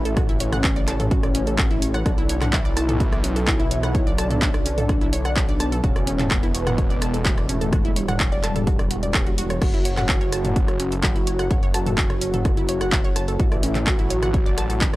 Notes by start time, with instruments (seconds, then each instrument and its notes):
Already playing: detuned saw bass A1, analog synth lead E4
0.05 synth arpeggio sound A4, closed hi-hat
0.17 synth arpeggio sound F#4, kick, cross-stick, closed hi-hat
0.29 synth arpeggio sound E4, closed hi-hat
0.40 analog synth lead C#4, synth arpeggio sound C#5, open hi-hat
0.53 synth arpeggio sound F#5, cross-stick, closed hi-hat, mid tom
0.64 synth arpeggio sound C#5, kick, clap, closed hi-hat
0.76 synth arpeggio sound D5, closed hi-hat
0.88 synth arpeggio sound A5, cross-stick, clap, open hi-hat
1.00 synth arpeggio sound A4, closed hi-hat, mid tom
1.11 synth arpeggio sound F#4, kick, closed hi-hat
1.23 synth arpeggio sound D5, cross-stick, closed hi-hat
1.35 synth arpeggio sound C#4, open hi-hat
1.47 synth arpeggio sound A4, closed hi-hat
1.58 synth arpeggio sound F#4, kick, cross-stick, clap, closed hi-hat
1.71 synth arpeggio sound E4, closed hi-hat
1.82 synth arpeggio sound C#5, open hi-hat
1.94 synth arpeggio sound F#5, cross-stick, closed hi-hat
2.06 detuned saw bass B1, analog synth lead D4, synth arpeggio sound F#4, kick, cross-stick, closed hi-hat
2.18 synth arpeggio sound E4, closed hi-hat
2.29 synth arpeggio sound C#5, open hi-hat
2.42 synth arpeggio sound F#5, cross-stick, clap, closed hi-hat, mid tom
2.53 analog synth lead E4, synth arpeggio sound C#5, kick, clap, closed hi-hat
2.65 synth arpeggio sound D5, closed hi-hat
2.77 synth arpeggio sound A5, cross-stick, open hi-hat
2.89 synth arpeggio sound A4, closed hi-hat, mid tom
3.00 synth arpeggio sound F#4, kick, closed hi-hat
3.12 synth arpeggio sound D5, cross-stick, closed hi-hat
3.24 synth arpeggio sound C#4, open hi-hat
3.36 synth arpeggio sound A4, closed hi-hat
3.47 analog synth lead E4, synth arpeggio sound F#4, kick, cross-stick, clap, closed hi-hat
3.60 synth arpeggio sound E4, closed hi-hat
3.71 synth arpeggio sound C#5, open hi-hat
3.83 synth arpeggio sound F#5, cross-stick, closed hi-hat
3.95 synth arpeggio sound C#5, kick, closed hi-hat
4.07 synth arpeggio sound D5, closed hi-hat
4.18 analog synth lead D4, synth arpeggio sound A5, cross-stick, open hi-hat
4.30 synth arpeggio sound A4, closed hi-hat, mid tom
4.42 synth arpeggio sound F#4, kick, clap, closed hi-hat
4.54 synth arpeggio sound D5, cross-stick, closed hi-hat
4.66 synth arpeggio sound C#4, open hi-hat
4.78 synth arpeggio sound A4, closed hi-hat, mid tom
4.89 synth arpeggio sound F#4, kick, cross-stick, closed hi-hat
5.01 synth arpeggio sound E4, closed hi-hat
5.13 synth arpeggio sound C#5, open hi-hat
5.25 synth arpeggio sound F#5, cross-stick, closed hi-hat
5.36 synth arpeggio sound C#5, kick, clap, closed hi-hat
5.49 synth arpeggio sound D5, closed hi-hat
5.60 synth arpeggio sound A5, cross-stick, open hi-hat
5.72 synth arpeggio sound A4, closed hi-hat
5.84 detuned saw bass E1, analog synth lead C#4, synth arpeggio sound F#4, kick, closed hi-hat
5.96 synth arpeggio sound D5, cross-stick, closed hi-hat
6.07 synth arpeggio sound C#4, open hi-hat
6.19 synth arpeggio sound A4, clap, closed hi-hat, mid tom
6.31 analog synth lead B3, synth arpeggio sound F#4, kick, cross-stick, clap, closed hi-hat
6.43 synth arpeggio sound E4, closed hi-hat
6.55 synth arpeggio sound C#5, open hi-hat
6.67 synth arpeggio sound F#5, cross-stick, closed hi-hat, mid tom
6.78 synth arpeggio sound C#5, kick, closed hi-hat
6.90 synth arpeggio sound D5, closed hi-hat
7.02 synth arpeggio sound A5, cross-stick, open hi-hat
7.14 synth arpeggio sound A4, closed hi-hat
7.25 analog synth lead A3, synth arpeggio sound F#4, kick, clap, closed hi-hat
7.37 synth arpeggio sound D5, cross-stick, closed hi-hat
7.49 synth arpeggio sound C#4, open hi-hat
7.61 synth arpeggio sound A4, closed hi-hat
7.73 synth arpeggio sound F#4, kick, cross-stick, closed hi-hat, mid tom
7.85 synth arpeggio sound E4, closed hi-hat
7.96 analog synth lead G3, synth arpeggio sound C#5, open hi-hat
8.08 synth arpeggio sound F#5, cross-stick, closed hi-hat, mid tom
8.20 synth arpeggio sound C#5, kick, clap, closed hi-hat
8.32 synth arpeggio sound D5, closed hi-hat
8.43 synth arpeggio sound A5, cross-stick, clap, open hi-hat
8.56 synth arpeggio sound A4, closed hi-hat, mid tom
8.67 synth arpeggio sound F#4, kick, closed hi-hat
8.79 synth arpeggio sound D5, cross-stick, closed hi-hat
8.91 synth arpeggio sound F#4, open hi-hat
9.03 synth arpeggio sound D5, closed hi-hat
9.14 synth arpeggio sound C#5, kick, cross-stick, clap, closed hi-hat
9.27 synth arpeggio sound F#4, closed hi-hat
9.38 synth arpeggio sound F#4, open hi-hat
9.50 synth arpeggio sound C#5, cross-stick, closed hi-hat
9.62 detuned saw bass F#1, analog synth lead F#4, synth arpeggio sound F#4, kick, cross-stick, closed hi-hat, crash
9.74 synth arpeggio sound E4, closed hi-hat
9.85 synth arpeggio sound C#5, open hi-hat
9.97 synth arpeggio sound F#5, cross-stick, clap, closed hi-hat, mid tom
10.09 analog synth lead F#4, synth arpeggio sound C#5, kick, clap, closed hi-hat
10.21 synth arpeggio sound C#5, closed hi-hat
10.32 synth arpeggio sound A5, cross-stick, open hi-hat
10.45 synth arpeggio sound A4, closed hi-hat, mid tom
10.56 synth arpeggio sound F#4, kick, closed hi-hat
10.68 synth arpeggio sound C#5, cross-stick, closed hi-hat
10.80 synth arpeggio sound C#4, open hi-hat
10.92 synth arpeggio sound A4, closed hi-hat
11.03 analog synth lead F#4, synth arpeggio sound F#4, kick, cross-stick, clap, closed hi-hat
11.16 synth arpeggio sound E4, closed hi-hat
11.27 synth arpeggio sound C#5, open hi-hat
11.39 synth arpeggio sound F#5, cross-stick, closed hi-hat
11.51 synth arpeggio sound C#5, kick, closed hi-hat
11.63 synth arpeggio sound C#5, closed hi-hat
11.74 analog synth lead F#4, synth arpeggio sound A5, cross-stick, open hi-hat
11.86 synth arpeggio sound A4, closed hi-hat, mid tom
11.98 synth arpeggio sound F#4, kick, clap, closed hi-hat
12.10 synth arpeggio sound C#5, cross-stick, closed hi-hat
12.21 synth arpeggio sound C#4, open hi-hat
12.34 synth arpeggio sound A4, closed hi-hat, mid tom
12.45 synth arpeggio sound F#4, kick, cross-stick, closed hi-hat
12.57 synth arpeggio sound E4, closed hi-hat
12.69 synth arpeggio sound C#5, open hi-hat
12.81 synth arpeggio sound F#5, cross-stick, closed hi-hat
12.92 synth arpeggio sound C#5, kick, clap, closed hi-hat
13.04 synth arpeggio sound C#5, closed hi-hat
13.16 synth arpeggio sound A5, cross-stick, open hi-hat
13.28 synth arpeggio sound A4, closed hi-hat
13.40 detuned saw bass A1, analog synth lead E4, synth arpeggio sound F#4, kick, closed hi-hat
13.52 synth arpeggio sound D5, cross-stick, closed hi-hat
13.63 synth arpeggio sound C#4, open hi-hat
13.75 synth arpeggio sound A4, clap, closed hi-hat, mid tom
13.87 synth arpeggio sound F#4, analog synth lead F#4, kick, cross-stick, clap, closed hi-hat
13.99 synth arpeggio sound E4, closed hi-hat
14.10 synth arpeggio sound C#5, open hi-hat
14.23 synth arpeggio sound F#5, cross-stick, closed hi-hat, mid tom
14.34 synth arpeggio sound C#5, kick, closed hi-hat
14.46 synth arpeggio sound D5, closed hi-hat
14.58 synth arpeggio sound A5, cross-stick, open hi-hat
14.70 synth arpeggio sound A4, closed hi-hat
14.81 analog synth lead E4, synth arpeggio sound F#4, kick, clap, closed hi-hat